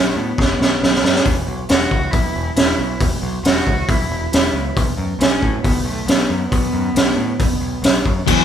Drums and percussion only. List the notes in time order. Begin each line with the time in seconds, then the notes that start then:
0.38 kick, snare
0.61 snare
0.83 snare
0.94 snare
1.04 snare
1.15 snare
1.25 kick, open hi-hat
1.69 snare, open hi-hat
1.91 kick
2.13 kick, open hi-hat
2.56 snare, open hi-hat
3.00 kick, open hi-hat
3.45 snare, open hi-hat
3.67 kick
3.89 kick, open hi-hat
4.33 snare, open hi-hat
4.77 kick, open hi-hat
5.20 snare, open hi-hat
5.43 kick
5.64 kick, open hi-hat
6.08 snare, open hi-hat
6.52 kick, open hi-hat
6.96 snare, open hi-hat
7.40 kick, open hi-hat
7.84 snare, open hi-hat
8.06 kick
8.27 kick, crash